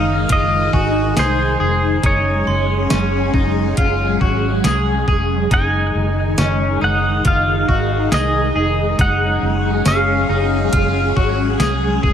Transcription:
0.00 0.24 F#1 medium
0.00 2.00 D#3 medium
0.00 2.00 G#3 medium
0.00 0.30 D#4 medium
0.00 2.00 D#4 medium
0.00 0.32 F5 medium
0.29 0.68 F#1 medium
0.29 0.73 F4 medium
0.29 1.14 D#5 medium
0.29 kick medium
0.29 closed hi-hat medium
0.73 1.12 G#1 medium
0.73 1.16 F#4 medium
0.73 2.43 G#5 medium
0.73 kick medium
1.17 1.55 C2 medium
1.17 1.59 G#4 medium
1.17 2.06 C5 medium
1.17 snare loud
1.17 closed hi-hat medium
1.17 tambourine medium
1.60 1.99 F1 medium
1.60 2.04 G#4 medium
2.03 2.42 F#1 medium
2.03 5.48 F#3 medium
2.03 5.48 G#3 medium
2.03 5.48 C#4 medium
2.03 2.90 D#4 medium
2.03 5.48 G#4 medium
2.03 3.75 C#5 medium
2.03 kick loud
2.03 closed hi-hat medium
2.47 2.85 F#1 medium
2.47 5.69 C6 medium
2.90 3.29 F#1 medium
2.90 3.34 C#4 medium
2.90 snare loud
2.90 closed hi-hat medium
2.90 tambourine medium
3.34 3.72 F#1 medium
3.34 3.78 D#4 medium
3.34 kick medium
3.77 4.16 F#1 medium
3.77 4.21 F4 medium
3.77 kick medium
3.77 closed hi-hat medium
4.21 4.59 G#1 medium
4.21 4.64 F#4 medium
4.21 kick medium
4.64 5.03 C2 medium
4.64 5.07 G#4 medium
4.64 snare loud
4.64 closed hi-hat medium
4.64 tambourine medium
5.08 5.46 F1 medium
5.08 5.51 G#4 medium
5.08 kick medium
5.51 5.90 F#1 loud
5.51 8.96 D#3 medium
5.51 12.13 G#3 medium
5.51 8.95 D#4 medium
5.51 6.38 D#4 medium
5.51 6.84 G#5 loud
5.51 kick loud
5.51 closed hi-hat medium
5.95 6.33 F#1 medium
6.38 6.76 F#1 loud
6.38 6.81 C#4 medium
6.38 snare loud
6.38 closed hi-hat medium
6.38 tambourine medium
6.81 7.20 F#1 medium
6.81 7.25 D#4 medium
6.81 7.27 F#5 medium
6.81 9.38 D#6 medium
7.25 7.64 F#1 medium
7.25 7.68 F4 medium
7.25 8.16 F5 medium
7.25 kick medium
7.25 closed hi-hat medium
7.68 8.07 G#1 medium
7.68 8.11 F#4 medium
7.68 kick medium
8.12 8.50 C2 medium
8.12 8.54 G#4 medium
8.12 9.01 D#5 medium
8.12 snare loud
8.12 closed hi-hat medium
8.12 tambourine medium
8.55 8.94 F1 medium
8.55 8.99 G#4 medium
8.99 9.37 F#1 loud
8.99 12.13 F#3 medium
8.99 12.13 C#4 medium
8.99 9.85 D#4 medium
8.99 12.13 G#4 medium
8.99 9.87 F#5 loud
8.99 kick loud
8.99 closed hi-hat medium
9.42 9.81 F#1 loud
9.85 10.24 F#1 loud
9.85 10.29 C#4 medium
9.85 11.13 F5 medium
9.85 snare loud
9.85 closed hi-hat medium
9.85 tambourine medium
10.29 10.68 F#1 medium
10.29 10.73 D#4 medium
10.73 11.11 F#1 loud
10.73 11.16 F4 medium
10.73 12.13 F6 medium
10.73 kick medium
10.73 closed hi-hat medium
11.16 11.55 G#1 medium
11.16 11.59 F#4 medium
11.16 kick medium
11.59 11.98 C2 medium
11.59 12.02 G#4 medium
11.59 snare loud
11.59 closed hi-hat medium
11.59 tambourine medium
12.03 12.13 F1 medium
12.03 12.13 G#4 medium
12.03 kick medium

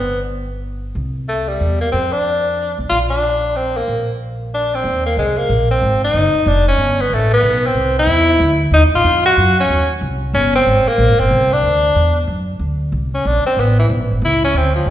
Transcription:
0.00 0.91 G1 medium
0.00 0.20 B3 medium
0.95 1.56 C2 medium
1.29 1.50 A3 medium
1.48 1.80 G3 medium
1.60 1.90 E2 medium
1.81 1.91 A#3 medium
1.92 2.74 F2 medium
1.92 2.14 C4 medium
2.12 2.78 D4 medium
2.78 2.89 B1 medium
2.89 3.83 A#1 medium
2.89 2.99 F4 medium
3.10 3.57 D4 medium
3.56 3.79 C4 medium
3.77 4.09 A#3 medium
3.87 4.80 A#1 medium
4.54 4.76 D4 medium
4.75 5.05 C4 medium
4.84 5.15 D#2 medium
5.06 5.17 A#3 medium
5.17 5.48 C2 medium
5.17 5.39 G#3 medium
5.37 5.70 A#3 medium
5.49 5.81 A#1 medium
5.71 6.00 C4 medium
5.81 6.13 G#1 medium
6.04 6.50 D#4 medium
6.14 6.33 F#1 medium
6.34 muted upright bass stroke soft
6.46 6.77 F1 medium
6.46 6.68 D4 medium
6.68 7.02 C#4 medium
6.78 7.09 G1 medium
7.01 7.15 B3 medium
7.10 7.42 A1 medium
7.10 7.33 A3 medium
7.33 7.68 B3 medium
7.42 7.74 B1 medium
7.66 7.97 C4 medium
7.75 8.06 C2 medium
7.99 8.58 E4 loud
8.07 8.39 E2 medium
8.39 8.70 D2 medium
8.71 8.84 D#2 medium
8.71 8.83 D#4 medium
8.82 8.93 B1 soft
8.94 9.04 A#1 medium
8.94 9.24 F4 loud
9.04 9.36 F2 medium
9.26 9.56 F#4 loud
9.37 9.69 F#2 medium
9.60 9.93 C#4 medium
9.69 10.01 D#2 medium
10.01 10.33 C2 medium
10.33 10.65 G1 medium
10.33 10.53 C#4 medium
10.55 10.90 C4 medium
10.66 10.85 G#1 medium
10.86 11.21 A#3 medium
10.86 muted upright bass stroke soft
10.98 11.09 A#1 medium
11.09 11.19 G#1 medium
11.20 11.30 G1 medium
11.20 11.54 C4 loud
11.30 11.62 C2 medium
11.53 12.29 D4 loud
11.63 11.95 D2 medium
11.95 12.27 E2 medium
12.27 12.59 F#2 medium
12.59 12.91 D2 medium
12.92 13.24 C2 medium
13.14 13.28 C#4 medium
13.25 13.44 A#1 medium
13.25 13.46 D4 medium
13.45 13.61 C4 medium
13.45 muted upright bass stroke soft
13.57 13.89 A1 medium
13.57 13.79 B3 medium
13.79 13.86 E3 medium
13.89 14.00 B1 medium
14.00 14.10 A1 soft
14.11 14.21 G1 medium
14.22 14.53 C#2 medium
14.22 14.43 E4 medium
14.44 14.58 C#4 medium
14.54 14.85 D2 medium
14.54 14.75 C4 medium
14.75 14.90 F3 medium
14.86 14.90 D#2 medium

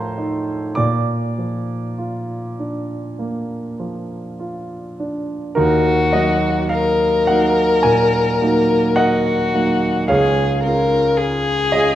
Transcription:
0.00 0.74 A2 medium
0.00 0.81 F3 medium
0.00 0.53 F4 medium
0.00 0.81 A4 medium
0.00 0.81 A#4 medium
0.00 0.73 C5 medium
0.00 0.80 A5 medium
0.00 0.80 A#5 loud
0.00 0.76 C6 medium
0.18 0.78 D#4 soft
0.75 3.16 A#2 medium
0.75 4.36 D5 medium
0.75 4.39 D6 medium
1.38 2.35 F3 soft
1.98 2.96 F4 soft
2.59 3.56 D4 soft
3.19 4.16 A#3 soft
3.80 4.75 F3 soft
4.39 5.34 F4 soft
5.00 5.57 D4 soft
5.55 6.12 D#2 medium
5.55 6.09 D#4 medium
5.55 6.09 F#4 medium
5.55 6.68 F#4 medium
5.55 6.13 A#4 medium
6.13 7.24 F#3 soft
6.13 7.24 A#3 soft
6.13 7.24 D#4 soft
6.13 6.70 D#5 medium
6.69 8.98 A#4 medium
6.69 7.27 F5 medium
7.27 7.80 F#3 soft
7.27 7.80 A#3 soft
7.27 7.81 D#4 medium
7.27 7.83 F#5 medium
7.83 8.38 A#2 medium
7.83 8.95 G#5 medium
8.41 9.49 F#3 soft
8.41 9.49 A#3 soft
8.41 9.49 D#4 soft
8.96 10.09 F#4 medium
8.96 10.05 A#4 medium
8.96 10.05 D#5 medium
8.96 10.08 F#5 loud
9.54 10.05 F#3 soft
9.54 10.05 A#3 soft
9.54 10.05 D#4 soft
10.08 10.63 C#2 medium
10.08 11.69 G#4 medium
10.08 10.62 G#4 medium
10.08 11.69 C#5 medium
10.08 11.73 F5 loud
10.63 11.70 G#3 soft
10.63 11.70 C#4 soft
10.63 11.70 F4 soft
10.63 11.19 A#4 medium
11.17 11.95 G#4 medium
11.72 11.95 G#3 soft
11.72 11.95 C#4 soft
11.72 11.95 F4 medium
11.72 11.95 D#5 medium

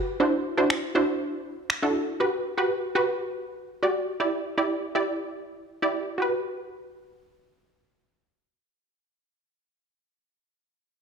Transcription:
0.00 0.14 F#4 medium
0.00 0.14 G4 medium
0.00 0.14 B4 medium
0.20 0.51 D4 medium
0.20 0.51 E4 medium
0.20 0.52 F#4 medium
0.20 0.52 C5 medium
0.57 0.89 D4 medium
0.57 0.89 E4 medium
0.57 0.89 F#4 medium
0.57 0.89 C5 loud
0.70 finger snap loud
0.95 1.68 D4 medium
0.95 1.68 E4 medium
0.95 1.68 F#4 medium
0.95 1.68 C5 loud
1.70 finger snap loud
1.82 2.14 D4 medium
1.82 2.14 E4 medium
1.82 2.14 F#4 medium
1.82 2.14 A4 loud
2.20 2.51 F#4 medium
2.20 2.52 G4 medium
2.20 2.52 B4 loud
2.58 2.89 F#4 medium
2.58 2.89 G4 medium
2.58 2.89 B4 loud
2.95 3.68 F#4 medium
2.95 3.68 G4 medium
2.95 3.69 B4 loud
3.83 4.14 F#4 medium
3.83 4.14 G4 medium
3.83 4.14 D5 loud
4.20 4.51 E4 medium
4.20 4.52 G4 medium
4.20 4.52 D5 medium
4.58 4.89 E4 medium
4.58 4.89 G4 medium
4.58 4.89 D5 medium
4.95 5.68 E4 medium
4.95 5.68 G4 medium
4.95 5.69 D5 loud
5.82 6.14 E4 medium
5.82 6.14 G4 medium
5.82 6.14 D5 medium
6.18 9.46 F#4 medium
6.18 9.48 G4 medium
6.18 9.50 B4 medium

